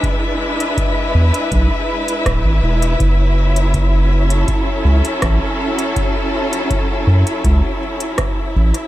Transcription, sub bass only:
\new Staff \with { instrumentName = "Sub bass" } { \clef bass \time 4/4 \key fis \minor \tempo 4 = 81 r4. e,16 r16 b,,16 r8. d,,16 gis,,16 e,,8 | fis,,2 r8 cis,16 r16 a,,16 r8. | r4. fis,16 r16 cis,16 r4 r16 a,,16 r16 | }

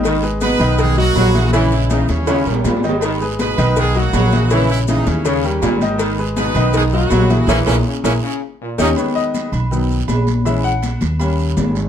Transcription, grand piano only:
<<
  \new Staff \with { instrumentName = "Grand piano" } { \time 4/4 \key gis \minor \tempo 4 = 161 <dis dis' dis''>8 <gis gis' b'>8 <gis gis' b'>8 <dis dis' dis''>4 <fis fis' dis''>4 <e e' gis'>8 | <cis cis' cis''>4 <e e' gis'>4 <cis cis' cis''>8 <g g' ais'>4 <dis dis' dis''>8~ | <dis dis' dis''>8 <gis gis' b'>8 <gis gis' b'>8 <dis dis' dis''>4 <fis fis' dis''>4 <e e' gis'>8 | <cis cis' cis''>4 <e e' gis'>4 <cis cis' cis''>8 <g g' ais'>4 <dis dis' dis''>8~ |
<dis dis' dis''>8 <gis gis' b'>8 <gis gis' b'>8 <dis dis' dis''>4 <fis fis' dis''>4 <e e' gis'>8 | <e' gis' ais'>8 <e' gis' ais'>8 r8 <e' gis' ais'>8 r4. <cis' dis' g'>8 | cis''8 dis''4 r2 r8 | e''8 fis''4 r2 r8 | }
  \new Staff \with { instrumentName = "Grand piano" } { \clef bass \time 4/4 \key gis \minor r1 | r1 | r1 | r1 |
r1 | r1 | <dis gis b>4. r8 <dis fis b>8 r4. | <e gis cis'>8 r4. <g ais cis'>4. r8 | }
>>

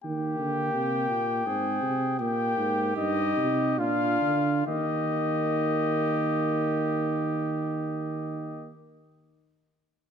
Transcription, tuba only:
\new Staff \with { instrumentName = "Tuba" } { \clef bass \time 3/4 \key ees \major \tempo 4 = 66 ees8 d8 c8 bes,8 aes,8 c8 | bes,8 aes,8 g,8 c8 bes,8 d8 | ees2.~ | ees2. | }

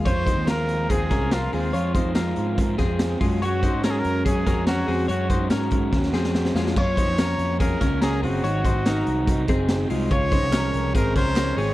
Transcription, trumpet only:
\new Staff \with { instrumentName = "Trumpet" } { \time 4/4 \key ges \lydian \tempo 4 = 143 c''4 bes'4 aes'4 f'8 f'8~ | f'4 r2. | ges'4 \tuplet 3/2 { bes'16 aes'16 bes'4 } aes'4 ges'4 | ges'4 r2. |
des''2 bes'4 aes'8 ges'8~ | ges'2~ ges'8 r4. | des''2 bes'8 c''4 des''8 | }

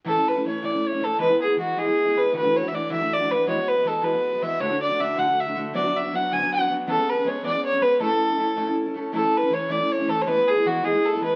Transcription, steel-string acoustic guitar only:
\new Staff \with { instrumentName = "Steel-string acoustic guitar" } { \time 6/8 \key a \major \tempo 4. = 106 <a, e a cis' e'>16 <a cis' e'>8 <a cis' e'>16 <e a cis' e'>8 <a, e a cis' e'>16 <a cis' e'>8 <a cis' e'>16 <e a cis' e'>8 | <e gis b e'>16 <gis b e'>8 <gis b e'>16 <e gis b e'>8 <e gis b e'>16 <gis b e'>8 <gis b e'>16 <e gis b e'>8 | <d, a, e a d' fis'>16 <e a d' fis'>8 <e a d' fis'>16 <e a d' fis'>8 <d, a, e a d' fis'>16 <e a d' fis'>8 <e a d' fis'>16 <e a d' fis'>8 | <e gis b fis'>16 <gis b fis'>8 <gis b fis'>16 <e gis b fis'>8 <e gis b fis'>16 <gis b fis'>8 <gis b fis'>16 <e gis b fis'>8 |
<d, a, d a d' fis'>16 <d a d' fis'>8 <d a d' fis'>16 <d a d' fis'>8 <d, a, d a d' fis'>16 <d a fis'>8 <d a d' fis'>16 <d a d' fis'>8 | <d, d fis b d' fis'>16 <fis b d' fis'>8 <fis b d' fis'>16 <fis b d' fis'>8 <d, d fis b d' fis'>16 <fis b d' fis'>8 <fis b d' fis'>16 <fis b d' fis'>8 | <e gis b cis' gis'>16 <b cis' gis'>8 <b cis' gis'>16 <gis b cis' gis'>8 <e gis b cis' gis'>16 <b cis' gis'>8 <b cis' gis'>16 <gis b cis' gis'>8 | <a, a cis' e' a'>16 <cis' e' a'>8 <cis' e'>16 <a cis' e' a'>8 <a, a cis' e' a'>16 <cis' e' a'>8 <cis' e' a'>16 <a cis' e' a'>8 |
<a, e a cis' e'>16 <a cis' e'>8 <a cis' e'>16 <e a cis' e'>8 <a, e a cis' e'>16 <a cis' e'>8 <a cis' e'>16 <e a cis' e'>8 | <e gis b e'>16 <gis b e'>8 <gis b e'>16 <e gis b e'>8 <e gis b e'>16 <gis b e'>8 <gis b e'>16 <e gis b e'>8 | }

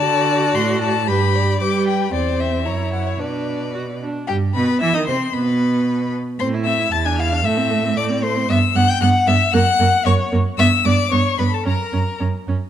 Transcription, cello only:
\new Staff \with { instrumentName = "Cello" } { \clef bass \time 2/4 \key b \minor \tempo 4 = 114 d4 a,4 | g,4 g4 | e,4 fis,4 | b,4. r8 |
\key a \dorian g,8 b,8 e16 ees16 c8 | b,4. r8 | a,4 e,4 | a,2 |
\key fis \phrygian g,8 g,8 g,8 g,8 | fis,8 fis,8 fis,8 fis,8 | g,8 g,8 g,8 g,8 | fis,8 fis,8 fis,8 fis,8 | }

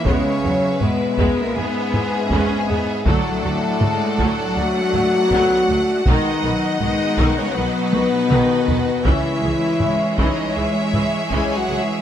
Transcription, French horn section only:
\new Staff \with { instrumentName = "French horn section" } { \time 4/4 \key cis \minor \tempo 4 = 80 cis'4 b8. ais16 gis2 | a2 fis'2 | dis'4 dis'8. cis'16 b2 | e'4. dis'8 e'4 \tuplet 3/2 { gis'8 fis'8 e'8 } | }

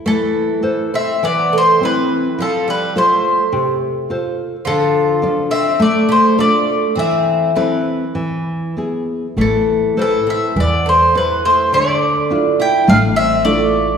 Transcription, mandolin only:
\new Staff \with { instrumentName = "Mandolin" } { \time 4/4 \key a \minor \tempo 4 = 103 a'4. e''8 d''8 c''8 b'4 | a'8 b'8 c''4. r4. | a'4. e''8 d''8 c''8 d''4 | e''4 b'4. r4. |
a'4 a'8 e''8 d''8 c''8 b'8 c''8 | d''4. g''8 f''8 e''8 d''4 | }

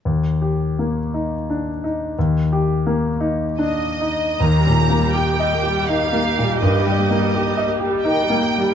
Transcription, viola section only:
\new Staff \with { instrumentName = "Viola section" } { \clef bass \time 3/4 \key ees \major \tempo 4 = 83 << { r2. | r2. | g'2.~ | g'2. | } \\ { r2. | r2. | ees16 g16 bes16 g16 ees16 g16 bes16 g16 ees16 g16 bes16 g16 | ees16 g16 bes16 g16 ees16 g16 bes16 g16 ees16 g16 bes16 g16 | } >> }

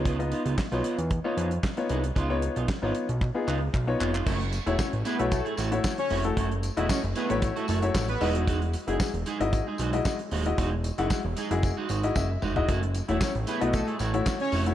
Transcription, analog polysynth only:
\new Staff \with { instrumentName = "Analog polysynth" } { \time 4/4 \key fis \dorian \tempo 4 = 114 r1 | r1 | r8. <e' e''>16 <cis' cis''>16 r16 <b b'>8 <a a'>8 r8. <cis' cis''>8 r16 | r8. <e' e''>16 <cis' cis''>16 r16 <b b'>8 r16 <a a'>16 <a a'>16 r8 <b b'>8 r16 |
r1 | r1 | r8. <e' e''>16 <cis' cis''>16 r16 <b b'>8 <a a'>8 r8. <cis' cis''>8 r16 | }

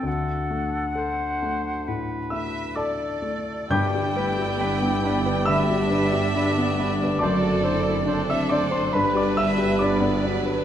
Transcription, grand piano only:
\new Staff \with { instrumentName = "Grand piano" } { \time 4/4 \key g \major \tempo 4 = 68 << { r2 r8 <e'' e'''>8 <d'' a'' d'''>4 | <g'' d''' g'''>2 <e'' b'' e'''>2 | <d'' a'' d'''>4~ <d'' a'' d'''>16 <e'' e'''>16 <d'' d'''>16 c'''16 <b' b''>16 <d'' d'''>16 <e'' e'''>8 <d'' b'' d'''>4 | } \\ { d,8 a8 a'8 a8 a,8 a8 a'8 a8 | g,16 g'16 b'16 g'16 d'16 b16 d'16 b'16 d16 g'16 b'16 g'16 d'16 b16 d'16 b'16 | fis,16 a'16 c''16 a'16 d'16 c'16 d'16 c''16 g,16 g'16 b'16 g'16 d'16 b16 d'16 b'16 | } >> }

